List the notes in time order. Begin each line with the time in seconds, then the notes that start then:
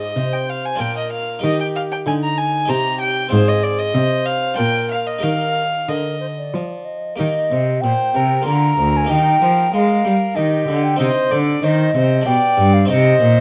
Already playing: G#2 D#4 F4 G#4 C5
0.00 D#5
0.16 C3 C5
0.33 G5
0.49 F5
0.65 G#5
0.76 D4 F4 A#4
0.80 A#2 A#4 G5
0.97 D#5
1.12 F5
1.39 D#4 G4 A#4
1.43 D#3 G4 D#5
1.60 G5
1.75 F5
1.92 G5
2.06 D3 D#4 G#5
2.24 A#5
2.37 G#5
2.65 C3 D#4 G4 C5 A#5
2.70 C3 G4
3.01 G5
3.29 G#2 C4 F4 G#4 C5
3.33 G#2
3.48 D#5
3.63 D5
3.79 D#5
3.94 C3 C5
4.25 F5
4.54 D4 F4 A#4 G5
4.59 A#2
4.91 F5
5.06 D#5
5.18 D#4 G4 A#4 F5
5.23 D#3 A#4
5.88 D3 A#4 D#5
6.20 C5
6.38 D5
6.54 F3
6.85 D#5
7.16 D#3 A#3 G4 A#4 D#5
7.20 D#3
7.51 C3
7.81 A#2 C5 G5
8.15 C3 A#4
8.42 A#3 F4
8.46 D3 A#5
8.78 D2
8.97 G#5
9.05 A#3 D#4 G4
9.09 D#3 G5
9.42 F3
9.74 G#3 F5
10.05 G3
10.36 D#3 G4 D#5
10.68 D3
10.84 G5
10.96 C3 C4 D#4 G4 C5 D#5
11.01 C3
11.31 D3 D5
11.62 D#3 C5 D#5
11.95 C3 C5
12.21 D4 G4
12.26 B2 D5 G5
12.57 G2
12.74 F5
12.85 C4 D#4 G4 D#5
12.90 C3 C5
13.21 A#2